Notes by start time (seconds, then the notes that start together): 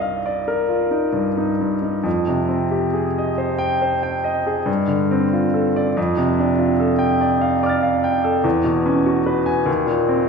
Already playing: C2 G2 D#4 F4 A#4 D5 D#5 F5
0.02 F5
0.26 D5
0.48 A#4
0.69 F4
0.91 D#4
1.13 G2
1.37 D#4
1.61 G2
1.82 D#4
2.03 F2
2.28 C3
2.49 C4
2.71 G4
2.93 G#4
3.18 D#5
3.38 C5
3.58 G5
3.82 C5
4.03 G5
4.24 D#5
4.47 G#4
4.66 G2
4.87 D3
5.11 C4
5.33 F4
5.54 A4
5.76 D5
5.97 F2
6.17 C3
6.39 D4
6.59 F4
6.80 A4
6.99 G5
7.21 D5
7.41 F5
7.63 D5 D6 F6
7.69 A6
7.83 F5
8.04 G5
8.24 A4
8.44 E2
8.64 B2
8.86 C#4
9.06 F#4
9.26 B4
9.46 G#5
9.66 D#2
9.86 A#2
10.08 C4